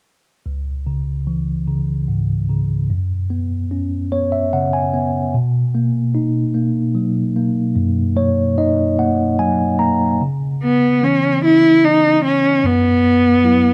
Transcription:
0.46 tine electric piano C#2
0.87 tine electric piano C#3
1.27 tine electric piano E3
1.67 tine electric piano C#3
2.08 tine electric piano G#2
2.49 tine electric piano C#3
2.90 tine electric piano F#2
3.30 tine electric piano B3
3.71 tine electric piano C#4
4.12 tine electric piano B3 C#5
4.32 tine electric piano E5
4.53 tine electric piano C#3 F#5
4.73 tine electric piano G#5
4.94 tine electric piano B3
5.34 tine electric piano B2
5.75 tine electric piano A#3
6.15 tine electric piano D#4
6.54 tine electric piano A#3
6.95 tine electric piano F#3
7.36 tine electric piano A#3
7.75 tine electric piano F#2
8.16 tine electric piano A#3 C#5
8.58 tine electric piano D#4 D#5
8.99 tine electric piano A#3 F#5
9.39 tine electric piano F#3 G#5
9.79 tine electric piano A#3 A#5
10.21 tine electric piano C#3
10.64 cello B3
11.01 tine electric piano E3 B3 C#4, cello C#4
11.45 cello E4
11.85 cello D#4
12.25 cello C#4
12.64 tine electric piano F#2, cello B3
13.44 tine electric piano F#3 B3 E4

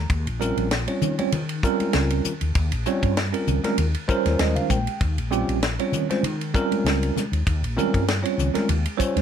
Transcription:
0.10 fretless electric bass D#2, kick, ride
0.26 fretless electric bass A#1, ride
0.40 tine electric piano G3 C4 C#4 F4 A#4, hi-hat pedal
0.56 fretless electric bass A#1, ride
0.71 snare, ride
0.88 tine electric piano G3 C4 C#4 F4 C#5, ride
1.01 fretless electric bass D#3, hi-hat pedal, low conga
1.18 tine electric piano G3 C4 C#4 F4 C#5, ride, high conga
1.32 fretless electric bass D#3, tine electric piano F4 C5, ride, low conga
1.49 ride
1.63 tine electric piano G3 C4 C#4 F4 A#4, kick, hi-hat pedal
1.80 ride, high conga
1.93 fretless electric bass C#2, snare, ride, high conga
2.10 ride
2.24 hi-hat pedal, low conga
2.41 fretless electric bass D#2, tine electric piano F4 A#4, ride
2.55 fretless electric bass D#2, kick, ride
2.71 fretless electric bass A#1, ride
2.86 tine electric piano G3 C4 C#4 F4 C#5, hi-hat pedal
3.02 fretless electric bass G2, kick, ride
3.17 snare, ride
3.32 tine electric piano G3 C4 C#4 F4 A#4, ride
3.47 fretless electric bass C#2, hi-hat pedal, low conga
3.64 tine electric piano G3 C4 C#4 F4 A#4, snare, ride, high conga
3.77 fretless electric bass D#2, tine electric piano F4 A#4, ride, low conga
3.94 ride
4.08 tine electric piano G3 C#4 F4 A#4 C5 C#5, muted fretless electric bass stroke, kick, hi-hat pedal
4.25 fretless electric bass D#2, snare, ride, high conga
4.39 fretless electric bass D#2, tine electric piano D#5, snare, ride, high conga
4.55 fretless electric bass D#3, tine electric piano F5, ride
4.70 fretless electric bass A#1, tine electric piano G5, kick, hi-hat pedal, high conga, low conga
4.87 tine electric piano F4 G4, ride
5.01 fretless electric bass D#2, kick, ride
5.17 fretless electric bass A#1, ride
5.31 tine electric piano G3 C4 C#4 F4 G4, hi-hat pedal
5.48 fretless electric bass A#1, ride
5.63 tine electric piano F4 A#4, snare, ride
5.79 tine electric piano G3 C4 C#4 F4 C#5, ride
5.92 fretless electric bass D#3, hi-hat pedal, low conga
6.09 tine electric piano G3 C4 C#4 F4 C5, snare, ride, high conga
6.23 fretless electric bass D#3, tine electric piano F4, ride, low conga
6.41 ride
6.54 tine electric piano G3 C4 C#4 F4 A#4, kick, hi-hat pedal
6.72 ride, high conga
6.84 fretless electric bass C#2, snare, ride, high conga
7.03 ride
7.16 snare, hi-hat pedal, high conga, low conga
7.32 fretless electric bass D#2, tine electric piano F4 C#5, ride
7.46 fretless electric bass D#2, kick, ride
7.62 fretless electric bass A#1, ride
7.77 tine electric piano G3 C4 C#4 F4 A#4, hi-hat pedal, high conga, low conga
7.94 fretless electric bass G2, kick, ride
8.08 tine electric piano F4 A#4, snare, ride
8.23 tine electric piano G3 C4 C#4 F4 C#5, ride
8.37 fretless electric bass C#2, hi-hat pedal, low conga
8.54 tine electric piano G3 C4 C#4 F4 A#4, snare, ride, high conga
8.68 fretless electric bass D#2, tine electric piano F4, ride, low conga
8.85 ride
8.97 tine electric piano G3 C#4 F4 C5 C#5, muted fretless electric bass stroke, kick, hi-hat pedal
9.16 fretless electric bass D#2, snare, ride, high conga

